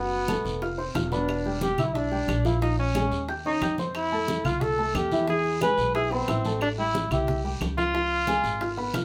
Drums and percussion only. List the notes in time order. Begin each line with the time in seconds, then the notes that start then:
0.12 high conga
0.28 high bongo, high conga, short guiro, claves
0.45 high bongo, high conga, short guiro
0.62 high bongo, high conga, long guiro
0.79 high bongo, high conga
0.95 high bongo, low bongo, high conga, short guiro, claves
1.12 high bongo, high conga, short guiro
1.28 high bongo, high conga, long guiro, claves
1.45 high conga
1.61 high bongo, high conga, short guiro
1.78 low conga, short guiro, claves
1.95 high bongo, high conga, long guiro
2.12 high conga
2.28 high bongo, low bongo, high conga, short guiro, claves
2.45 high conga, short guiro
2.62 high bongo, long guiro
2.78 high conga
2.95 high bongo, high conga, short guiro, claves
3.12 high bongo, high conga, short guiro
3.28 high bongo, high conga, long guiro
3.45 high bongo, high conga
3.61 high bongo, low bongo, high conga, short guiro, claves
3.78 high bongo, high conga, short guiro
3.95 high bongo, high conga, long guiro, claves
4.12 high conga
4.28 high bongo, high conga, short guiro
4.45 low conga, short guiro, claves
4.61 high bongo, high conga, low conga, long guiro
4.78 high conga
4.95 high bongo, low bongo, high conga, short guiro, claves
5.11 high conga, short guiro
5.28 high bongo, high conga, long guiro
5.45 high conga
5.61 high bongo, high conga, short guiro, claves
5.78 high bongo, high conga, short guiro
5.95 high bongo, high conga, long guiro
6.12 high bongo, high conga
6.28 high bongo, low bongo, high conga, short guiro, claves
6.45 high bongo, high conga, short guiro
6.61 high bongo, long guiro, claves
6.78 high conga
6.94 high bongo, high conga, short guiro
7.11 low conga, short guiro, claves
7.27 high bongo, high conga, low conga, long guiro
7.45 high conga
7.61 high bongo, low bongo, high conga, short guiro, claves
7.78 high conga, short guiro
7.94 high bongo, high conga, long guiro
8.11 high conga
8.27 high bongo, high conga, short guiro, claves
8.44 high bongo, high conga, short guiro
8.60 high bongo, high conga, long guiro
8.77 high bongo, high conga
8.94 high bongo, low bongo, high conga, short guiro, claves